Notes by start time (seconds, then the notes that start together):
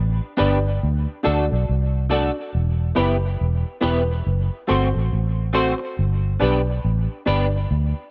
Already playing: A1
0.37 G1 B3 D4 G4 B4 D5
0.83 D2
1.23 D2 A3 D4 F#4 A4 D5
1.49 B1 A4 D5
1.69 C2
2.10 A3 D4 F#4 A4 D5
2.55 E1
2.95 F#1 B3 E4 G4 B4
3.41 E1
3.81 E1 B3 E4 G4 B4
4.27 F#1
4.67 G1 A3 C4 F#4 A4 C5
4.92 A1 A4 C5
5.13 A1
5.53 A3 C4 F#4 A4 C5
5.78 muted clean electric guitar stroke
5.99 G1
6.39 B1 B3 D4 G4 B4 D5
6.85 A1
7.26 G1 B3 D4 G4 B4 D5
7.71 D2